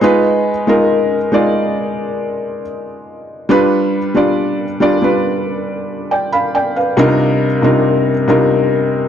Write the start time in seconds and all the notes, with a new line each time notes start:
0.01 G#3 D#4 F4 B4
0.67 G#3 D#4 F4 A#4
1.32 G#3 D#4 F4 D5
3.49 G3 D4 F4 B4
4.14 G3 D4 F4 D5
4.80 G3 D4 F4 D5
5.02 G3 D4 F4 B4
6.11 D5 G5
6.32 F5 B5
6.55 D5 G5
6.76 B4 F5
6.97 C3 G3 D4 D#4 F4 A#4
7.62 C3 G3 D4 D#4 F4 A#4
8.28 C3 G3 D4 D#4 F4 A#4